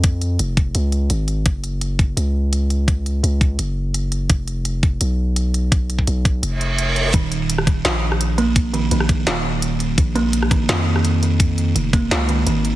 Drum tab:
HH |x-x-x-x-x-x-x-x-|x-x-x-x-x---x-x-|x-x-x-x-x---x-x-|x-x-x-x-x---x-x-|
SD |----------------|----------------|----------------|----------------|
BD |o-----o---------|o-----o---------|o-----o---------|o-----o---------|

HH |x-x-x-x-x-x-x-x-|x-x-x-x-x---x-x-|x-x-x-x-x---x-x-|x-x-x-x-x---x-x-|
SD |----------------|-----r--o--r----|-----r--o-------|-----r--o--r----|
BD |o--o--o---------|o-----o---------|o-----o---------|o-----o---------|

HH |x-x-x-x-x-x-x-x-|
SD |--------o-------|
BD |o-----o---------|